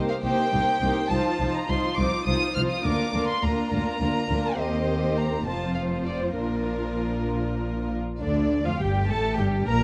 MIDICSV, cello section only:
0, 0, Header, 1, 2, 480
1, 0, Start_track
1, 0, Key_signature, -2, "major"
1, 0, Tempo, 580833
1, 910, Time_signature, 6, 3, 24, 8
1, 4271, Tempo, 607903
1, 6671, Tempo, 588235
1, 7998, End_track
2, 0, Start_track
2, 0, Title_t, "Cello section"
2, 0, Program_c, 0, 48
2, 190, Note_on_c, 0, 36, 49
2, 256, Note_off_c, 0, 36, 0
2, 432, Note_on_c, 0, 36, 51
2, 498, Note_off_c, 0, 36, 0
2, 674, Note_on_c, 0, 36, 53
2, 740, Note_off_c, 0, 36, 0
2, 911, Note_on_c, 0, 36, 54
2, 977, Note_off_c, 0, 36, 0
2, 1154, Note_on_c, 0, 36, 45
2, 1220, Note_off_c, 0, 36, 0
2, 1392, Note_on_c, 0, 36, 50
2, 1458, Note_off_c, 0, 36, 0
2, 1635, Note_on_c, 0, 36, 47
2, 1701, Note_off_c, 0, 36, 0
2, 1875, Note_on_c, 0, 36, 48
2, 1941, Note_off_c, 0, 36, 0
2, 2113, Note_on_c, 0, 36, 48
2, 2179, Note_off_c, 0, 36, 0
2, 2357, Note_on_c, 0, 38, 49
2, 2423, Note_off_c, 0, 38, 0
2, 2598, Note_on_c, 0, 38, 45
2, 2664, Note_off_c, 0, 38, 0
2, 2837, Note_on_c, 0, 38, 44
2, 2903, Note_off_c, 0, 38, 0
2, 3073, Note_on_c, 0, 38, 45
2, 3139, Note_off_c, 0, 38, 0
2, 3309, Note_on_c, 0, 38, 49
2, 3375, Note_off_c, 0, 38, 0
2, 3549, Note_on_c, 0, 38, 44
2, 3615, Note_off_c, 0, 38, 0
2, 3790, Note_on_c, 0, 39, 47
2, 4475, Note_off_c, 0, 39, 0
2, 4511, Note_on_c, 0, 41, 40
2, 5219, Note_on_c, 0, 46, 35
2, 5221, Note_off_c, 0, 41, 0
2, 6484, Note_off_c, 0, 46, 0
2, 6671, Note_on_c, 0, 38, 57
2, 7008, Note_off_c, 0, 38, 0
2, 7034, Note_on_c, 0, 41, 50
2, 7153, Note_off_c, 0, 41, 0
2, 7158, Note_on_c, 0, 43, 46
2, 7391, Note_off_c, 0, 43, 0
2, 7398, Note_on_c, 0, 45, 51
2, 7636, Note_off_c, 0, 45, 0
2, 7637, Note_on_c, 0, 43, 57
2, 7874, Note_off_c, 0, 43, 0
2, 7878, Note_on_c, 0, 46, 60
2, 7998, Note_off_c, 0, 46, 0
2, 7998, End_track
0, 0, End_of_file